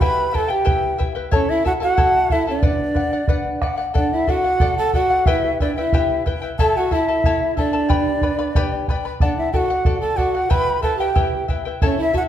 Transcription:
0.00 E4 G4 B4 E5 G5 B5, bombo low
0.32 E4 B4 E5 G5 A5 B5, bombo low
0.36 A4
0.48 E4 G4 B4 G5
0.65 E4 G4 B4 E5 G5, bombo low
0.98 E4 B4 E5 G5, bombo low
1.15 E4 B4 G5
1.31 C#4 E4 A4 C#5 E5 A5, bombo low
1.50 E4 E5
1.65 E4 F#4 A4 E5 F#5 A5, bombo low
1.80 E4 F#4 A4 F#5 A5
1.97 E4 A4 C#5 E5 A5, bombo low
2.30 E4 A4 E5 A5, bombo low
2.47 D4 E4 A4 D5 A5
2.62 B4 D5 F#5, bombo low
2.95 B4 D5 F#5, bombo low
3.13 D5 F#5
3.28 B4 D5 F#5, bombo low
3.62 B4 D5 F#5, bombo rim, bombo low
3.78 D5 F#5
3.94 D4 A4 D5 F#5, bombo low
4.13 E4 E5
4.27 F#4 A4 D5 F#5, bombo low
4.44 D5 F#5
4.60 A4 D5 F#5, bombo low
4.78 A4 A5
4.93 F#4 A4 D5 F#5, bombo low
5.10 D5 F#5
5.26 E4 G4 B4 E5 G5, bombo low
5.30 E4
5.60 D4 E4 B4 D5 E5 G5, bombo low
5.75 E4 B4 E5 G5
5.93 E4 G4 B4 E5 G5, bombo low
6.26 E4 B4 E5 G5, bombo low
6.42 E4 B4 G5
6.59 E4 A4 C#5 E5 A5, bombo low
6.77 F#4 F#5
6.91 E4 A4 E5 A5, bombo low
7.09 E4 A4 A5
7.24 E4 A4 C#5 E5 A5, bombo low
7.57 D4 E4 A4 D5 E5 A5, bombo low
7.73 E4 A4 A5
7.89 G4 B4 D5 G5 B5, bombo low
8.21 B4 D5 G5 B5, bombo low
8.39 B4 D5 B5
8.55 G4 B4 D5 G5 B5, bombo low
8.88 B4 D5 G5 B5, bombo low
9.05 B4 D5 B5
9.20 D4 A4 D5 F#5, bombo low
9.37 E4 E5
9.52 F#4 A4 D5 F#5 G5, bombo low
9.57 F#5
9.70 D5 F#5
9.85 A4 D5 F#5, bombo low
10.01 A4 A5
10.16 F#4 A4 D5 F#5, bombo low
10.35 D5 F#5
10.50 E4 G4 B4 E5 G5 B5, bombo low
10.82 E4 A4 B4 E5 G5 A5, bombo low
10.97 G4 B4 G5
11.01 E4
11.15 E4 G4 B4 E5 G5, bombo low
11.48 E4 B4 E5 G5, bombo low
11.65 E4 B4 G5
11.82 C#4 E4 A4 C#5 E5 A5, bombo low
11.98 E4 E5
12.13 E4 F#4 A4 E5 F#5 A5, bombo low

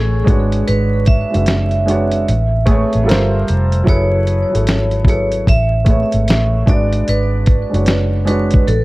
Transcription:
Already playing: A1 A3 G#4 B4 C#5 G#5
0.24 G#1 G#3 D4 F#4, kick, closed hi-hat
0.29 B4 C#5
0.52 closed hi-hat
0.67 G#1 B4, closed hi-hat
1.06 E5, kick, closed hi-hat
1.30 G#3 D4 F#4, closed hi-hat
1.35 F#1 B4 E5
1.46 snare, closed hi-hat
1.71 closed hi-hat
1.86 G#3 D4 F#4, closed hi-hat
1.90 B4 C#5
2.12 closed hi-hat
2.28 A1, closed hi-hat
2.66 A3 G#4 B4, kick, closed hi-hat
2.71 C#5
2.93 A1, closed hi-hat
3.03 G3 F4 A4
3.07 G1 A#4 C5, snare, closed hi-hat
3.48 F1, closed hi-hat
3.72 closed hi-hat
3.84 F#3 E4 G#4, kick
3.88 F#1 A4 B4 C#5, closed hi-hat
4.27 closed hi-hat
4.49 F#3 E4 G#4
4.54 G#1 A4 C#5, closed hi-hat
4.67 snare, closed hi-hat
4.91 closed hi-hat
5.04 F#3 E4 G#4, kick
5.08 A4 B4 C#5, closed hi-hat
5.32 closed hi-hat
5.47 A1 E5, kick, closed hi-hat
5.85 A3 G#4 B4, kick, closed hi-hat
5.90 C#5
6.12 G#1, closed hi-hat
6.28 A1, snare, closed hi-hat
6.66 G#1 G#3 D4 F#4 B4 D5, kick, closed hi-hat
6.71 D5
6.93 closed hi-hat
7.08 G#1 B4, closed hi-hat
7.46 kick, closed hi-hat
7.70 F#1 G#3 D4 F#4
7.74 B4 C#5, closed hi-hat
7.86 snare, closed hi-hat
8.25 G#3 D4 F#4 B4, closed hi-hat
8.29 B4 C#5
8.51 kick, closed hi-hat
8.67 A1 A4, closed hi-hat

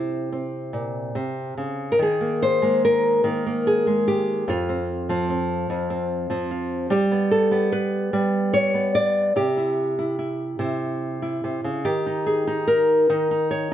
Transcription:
Already playing: C3 C4 E4
0.32 C4
0.73 A#2
1.15 C3
1.57 C#3
1.92 A#4
1.99 D#3 G#4
2.21 A#3
2.42 C5
2.62 G#3 A#3
2.85 A#4
3.24 D#3 A#3
3.46 A#3
3.67 G#4
3.87 G#3
4.08 G4
4.48 F2 F4
4.69 C4
5.09 F3 C4
5.30 C4
5.70 F2
5.90 C4
6.30 F3 C4
6.51 F4
6.90 G3 G4
7.11 B3
7.31 A4
7.51 B3 G4
7.72 B4
8.13 G3
8.53 C#5
8.74 B3
8.95 D5
9.36 C3 G4
9.57 E4
9.99 E4
10.19 E4
10.59 C3 E4
11.22 E4
11.44 C3
11.64 C#3
11.85 D#3 G4
12.06 D#4
12.26 G#4
12.47 D#4
12.67 A#4
13.10 D#3 D#4
13.31 D#4
13.51 C#5

